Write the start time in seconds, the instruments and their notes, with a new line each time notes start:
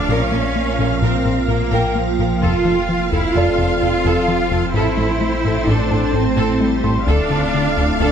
Already playing: sub bass D1, ambient pad F3, viola section F5, grand piano A#5 D6
0.09 sub bass A#1, double bass section A#1, analog synth bass A#2, ambient pad A#3 F4 A#4, cello section C#4, viola section A#4
0.32 double bass section A#1, analog synth bass A#3, viola section A#4
0.56 analog synth bass A#3
0.79 double bass section A#1, analog synth bass A#2, viola section A#4
1.02 double bass section A#1, analog synth bass A#2, cello section C4, viola section A#4
1.25 double bass section A#1, analog synth bass A#2, viola section A#4
1.48 double bass section A#1, analog synth bass A#2, cello section A#3, viola section A#4
1.71 double bass section A#1, analog synth bass A#2, viola section A#4, grand piano G5
1.95 cello section F3, analog synth bass A#3
2.19 double bass section A#1, analog synth bass A#2, viola section A#4
2.42 double bass section F1, sub bass F1, analog synth bass F2, ambient pad F3 C4 A4, cello section F4, viola section A4 F5, taiko
2.65 double bass section F1, analog synth bass F3, viola section A4
2.89 analog synth bass F3
3.12 double bass section F1, analog synth bass F2, cello section E4, viola section A4, taiko
3.35 double bass section F1, analog synth bass F2, cello section F4, viola section A4, grand piano D5
3.59 double bass section F1, analog synth bass F2, viola section A4
3.80 double bass section F1, analog synth bass F2, cello section F4, viola section A4
4.05 double bass section F1, analog synth bass F2, viola section A4
4.28 analog synth bass F3
4.51 double bass section F1, analog synth bass F2, viola section A4
4.73 double bass section A1, sub bass A1, analog synth bass A2, ambient pad A3 E4, cello section E4, viola section A4 C5
4.97 double bass section A1, analog synth bass A3, viola section A4
5.21 analog synth bass A3
5.44 double bass section A1, analog synth bass A2, viola section A4
5.67 double bass section A1, analog synth bass A2, cello section D4, viola section A4
5.91 double bass section A1, analog synth bass A2, viola section A4, grand piano A5
6.14 double bass section A1, analog synth bass A2, cello section C4, viola section A4
6.37 double bass section A1, analog synth bass A2, viola section A4
6.60 cello section G3, analog synth bass A3
6.83 double bass section A1, analog synth bass A2, viola section A4, grand piano C6
7.07 sub bass D1, analog synth bass D2, double bass section D2, cello section D4, ambient pad D4 F4 A4, viola section A4 F5, taiko
7.30 double bass section D2, analog synth bass D3, viola section A4
7.54 analog synth bass D3
7.77 double bass section D2, analog synth bass D2, viola section A4
8.00 analog synth bass D2, double bass section D2, cello section D4, viola section A4